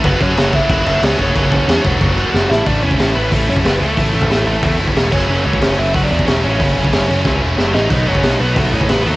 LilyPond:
<<
  \new Staff \with { instrumentName = "Lead electric guitar" } { \time 4/4 \key a \major \tempo 4 = 183 <b b'>8 <cis' cis''>4 <e' e''>4 <e' e''>8 <cis' cis''>8 <cis' cis''>8~ | <cis' cis''>4. r2 <e' e''>8 | <d' d''>8 <cis' cis''>4 <b b'>8 <a a'>8 <cis' cis''>8 <b b'>8 <a a'>8~ | <a a'>2~ <a a'>8 r4 <cis' cis''>8~ |
<cis' cis''>8 <cis' cis''>4 <e' e''>8 <fis' fis''>16 <d' d''>8. <cis' cis''>8 <cis' cis''>8~ | <cis' cis''>2~ <cis' cis''>8 r4 <dis' dis''>8~ | <dis' dis''>8 <cis' cis''>4 <b b'>8 <a a'>8 <cis' cis''>8 <b b'>8 <a a'>8 | }
  \new Staff \with { instrumentName = "Distorted electric guitar" } { \time 4/4 \key a \major <fis cis' fis' a'>8 <fis cis' fis' a'>8 <fis cis' fis' a'>8 <fis cis' fis' a'>8 <fis cis' fis' a'>8 <fis cis' fis' a'>8 <fis cis' fis' a'>8 <fis cis' fis' a'>8 | <fis cis' fis' a'>8 <fis cis' fis' a'>8 <fis cis' fis' a'>8 <fis cis' fis' a'>8 <fis cis' fis' a'>8 <fis cis' fis' a'>8 <fis cis' fis' a'>8 <a cis' e' a'>8 | <a, e a cis' e'>8 <a, e a cis' e'>8 <a, e a cis' e'>8 <a, e a cis' e'>8 <a, e a cis' e'>8 <a, e a cis' e'>8 <a, e a cis' e'>8 <a, e a cis' e'>8 | <a, e a cis' e'>8 <a, e a cis' e'>8 <a, e a cis' e'>8 <a, e a cis' e'>8 <a, e a cis' e'>8 <a, e a cis' e'>8 <a, e a cis' e'>8 <fis, cis fis a cis'>8 |
<fis, cis fis a cis'>8 <fis, cis fis a cis'>8 <fis, cis fis a cis'>8 <fis, cis fis a cis'>8 <fis, cis fis a cis'>8 <fis, cis fis a cis'>8 <fis, cis fis a cis'>8 <fis, cis fis a cis'>8 | <fis, cis fis a cis'>8 <fis, cis fis a cis'>8 <fis, cis fis a cis'>8 <fis, cis fis a cis'>8 <fis, cis fis a cis'>8 <fis, cis fis a cis'>8 <fis, cis fis a cis'>8 <fis, cis fis a cis'>8 | <b, fis b dis'>8 <b, fis b dis'>8 <b, fis b dis'>8 <b, fis b dis'>8 <b, fis b dis'>8 <b, fis b dis'>8 <b, fis b dis'>8 <b, fis b dis'>8 | }
  \new Staff \with { instrumentName = "Distorted electric guitar" } { \clef bass \time 4/4 \key a \major <fis, cis fis>4. <fis, cis fis>2~ <fis, cis fis>8 | <fis, cis fis>4. <fis, cis fis>2 r8 | <a, e a>8 <a, e a>8 <a, e a>8 <a, e a>8 <a, e a>8 <a, e a>8 <a, e a>8 <a, e a>8 | <a, e a>8 <a, e a>8 <e a>8 <a, e a>8 <a, e a>8 <a, e a>8 <a, e a>8 <fis, cis fis>8 |
<fis, cis fis>8 <fis, cis fis>8 <fis, cis fis>8 <fis, cis fis>8 <fis, cis fis>8 <fis, cis fis>8 <fis, cis fis>8 <fis, cis fis>8 | <fis, cis fis>8 <fis, cis fis>8 <fis, cis fis>8 <fis, cis fis>8 <fis, cis fis>8 <fis, cis fis>8 <fis, cis fis>8 <fis, cis fis>8 | <b, fis b>8 <b, fis b>8 <b, fis b>8 <b, fis b>8 <b, fis b>8 <b, fis b>8 <b, fis b>8 <b, fis b>8 | }
  \new Staff \with { instrumentName = "Picked electric bass" } { \clef bass \time 4/4 \key a \major fis,,8 fis,8 fis,,4 fis,,8 fis,,8 cis,8 fis,,8 | fis,,4 e,8 e,,8 fis,,4 fis,,8 a,,8 | a,,8 e,,8 a,,8 a,,8 a,,8 fis,8 fis,,8 cis,8 | a,,8 a,,8 a,,8 a,,8 e,8 fis,,8 e,,8 fis,,8 |
fis,,8 cis,8 fis,,8 fis,,8 fis,,8 e,8 e,,8 a,,8 | fis,,8 fis,,8 fis,,8 fis,,8 cis,8 e,,8 fis,,8 a,,8 | b,,8 fis,,8 b,,8 b,,8 b,,8 a,8 a,,8 dis,8 | }
  \new DrumStaff \with { instrumentName = "Drums" } \drummode { \time 4/4 <cymc bd>8 <cymc bd>8 <cymc sn>8 <cymc bd>8 <cymc bd>8 cymc8 <cymc sn>8 <cymc bd>8 | <cymc bd>8 <cymc bd>8 <cymc sn>8 <cymc bd>8 <cymc bd>8 cymc8 sn8 sn8 | <hho bd>8. bd16 <hho sn>4 <hho bd>8. bd16 <hho sn>4 | <hho bd>8. bd16 <hho sn>4 <hho bd>8. bd16 <hho sn>8 <cymc bd>8 |
r8. bd16 <hho sn>4 <hho bd>8. bd16 <hho sn>4 | <hho bd>8. bd16 <hho sn>4 <bd sn>4 sn8 sn8 | <cymc hho bd>8. bd16 <hho sn>4 <hho bd>8. bd16 <hho sn>4 | }
>>